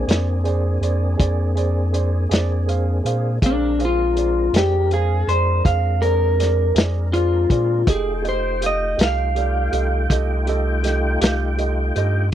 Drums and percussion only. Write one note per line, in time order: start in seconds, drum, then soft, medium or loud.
0.09 snare medium
0.09 closed hi-hat medium
0.45 closed hi-hat medium
0.83 closed hi-hat medium
1.20 kick medium
1.20 closed hi-hat medium
1.57 closed hi-hat medium
1.94 closed hi-hat medium
2.31 snare medium
2.31 closed hi-hat medium
2.69 closed hi-hat medium
3.06 closed hi-hat medium
3.42 kick loud
3.42 closed hi-hat medium
3.80 closed hi-hat medium
4.17 closed hi-hat medium
4.54 snare medium
4.54 closed hi-hat medium
4.91 closed hi-hat medium
5.29 closed hi-hat medium
5.65 kick medium
5.65 closed hi-hat medium
6.02 closed hi-hat medium
6.40 snare soft
6.40 closed hi-hat medium
6.76 snare loud
6.76 closed hi-hat medium
7.14 closed hi-hat medium
7.50 kick medium
7.50 closed hi-hat medium
7.87 kick loud
7.87 closed hi-hat medium
8.25 closed hi-hat soft
8.62 closed hi-hat medium
8.99 snare loud
8.99 closed hi-hat medium
9.36 closed hi-hat medium
9.73 closed hi-hat medium
10.10 kick medium
10.10 closed hi-hat medium
10.47 closed hi-hat medium
10.84 snare soft
10.84 closed hi-hat medium
11.21 snare loud
11.21 closed hi-hat medium
11.59 closed hi-hat medium
11.96 closed hi-hat medium